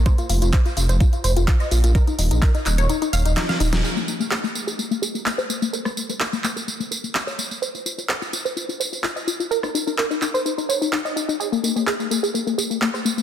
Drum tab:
HH |xxoxxxoxxxoxxxox|xxoxxxoxxxoxxxox|----------------|----------------|
TB |xxxxxxxxxxxxxxxx|xxxxxxxxxxxxxxxx|xxxxxxxxxxxxxxxx|xxxxxxxxxxxxxxxx|
CP |----x-------x---|----x-x-----x---|----x-------x---|----x-x-----x---|
SD |----------------|------------oo-o|----------------|-r--------------|
BD |o---o---o---o---|o---o-----------|----------------|----------------|

HH |----------------|----------------|----------------|
TB |xxxxxxxxxxxxxxxx|xxxxxxxxxxxxxxxx|xxxxxxxxxxxxxxxx|
CP |----x-------x---|----x-x-----x---|----x-------x---|
SD |----------------|-r--------------|----------------|
BD |----------------|----------------|----------------|